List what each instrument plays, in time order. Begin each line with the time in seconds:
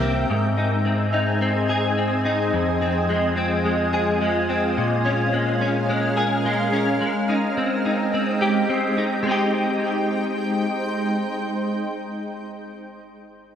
Already playing: clean electric guitar C3 A#3 G4, ambient pad C4 A#4 E5 G5
0.00 picked electric bass C2, clean electric guitar C4
0.26 clean electric guitar G#2, ambient pad C4 G#4 D#5 G#5
0.57 clean electric guitar D#4
0.85 clean electric guitar C4
1.13 clean electric guitar D#4
1.41 clean electric guitar C4
1.69 clean electric guitar G#4
1.97 clean electric guitar C4
2.25 clean electric guitar D#4
2.53 clean electric guitar F2, ambient pad F4
2.81 clean electric guitar C4
3.09 clean electric guitar G#3
3.37 clean electric guitar C4
3.65 clean electric guitar G#3
3.93 clean electric guitar G#4
4.21 clean electric guitar G#3
4.49 clean electric guitar C4
4.77 clean electric guitar A#2, ambient pad C#4 A#4 F5
5.05 clean electric guitar C#4
5.33 clean electric guitar G#3
5.61 clean electric guitar C#4
5.89 clean electric guitar G#3
6.17 clean electric guitar G#4
6.45 clean electric guitar G#3
6.72 clean electric guitar C#4
7.01 ambient pad G#3 C4 D#5 G5, clean electric guitar G#3
7.29 clean electric guitar D#4
7.57 clean electric guitar C4
7.85 clean electric guitar D#4
8.14 clean electric guitar C4
8.41 clean electric guitar G4
8.69 clean electric guitar C4
8.97 clean electric guitar D#4
9.23 clean electric guitar G#3 C4, ambient pad G#3 D#4 C5 G5
9.29 clean electric guitar D#4 G4